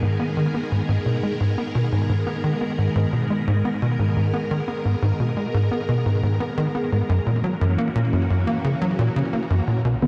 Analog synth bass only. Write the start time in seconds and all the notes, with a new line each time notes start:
0.02 G#2
0.20 B3
0.37 D#3
0.54 B3
0.72 G#2
0.89 G#2
1.06 B2
1.23 G#3
1.40 G#2
1.58 B3
1.75 B2
1.92 G#2
2.09 G#2
2.27 B3
2.44 D#3
2.61 B3
2.78 G#2
2.95 G#2
3.13 B2
3.30 G#3
3.47 G#2
3.65 B3
3.82 B2
3.99 G#2
4.16 G#2
4.33 B3
4.51 D#3
4.68 B3
4.85 G#2
5.02 G#2
5.20 B2
5.37 G#3
5.54 G#2
5.71 B3
5.89 B2
6.06 G#2
6.23 G#2
6.40 B3
6.58 D#3
6.75 B3
6.92 G#2
7.09 F#2
7.26 A#2
7.44 F#3
7.61 F#2
7.78 A#3
7.95 A#2
8.13 F#2
8.30 F#2
8.47 A#3
8.64 C#3
8.81 F#3
8.99 A#2
9.16 C#3
9.33 A#3
9.50 F#2
9.67 A#2
9.85 B2
10.02 D3